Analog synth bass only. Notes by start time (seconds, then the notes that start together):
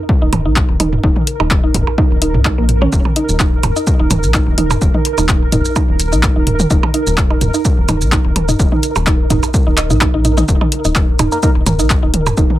0.22 D#1
0.45 A#1
0.69 D#1
1.04 D#1
1.40 D#1
1.74 D#1
2.11 D#1
2.34 C#2
2.58 A#1
2.92 D#1
3.29 D#1
3.63 D#1
4.00 D#1
4.23 A#1
4.47 D#1
4.81 D#1
5.18 D#1
5.52 D#1
5.89 D#1
6.12 A#1
6.36 D#1
6.70 D#1
7.07 D#1
7.41 D#1
7.78 D#1
8.01 A#1
8.25 D#1
8.59 D#1
8.96 D#1
9.30 D#1
9.67 D#1
9.90 A#1
10.14 A#1
10.48 D#1
10.85 D#1
11.19 D#1
11.56 D#1
11.79 A#1
12.03 D#1
12.37 D#1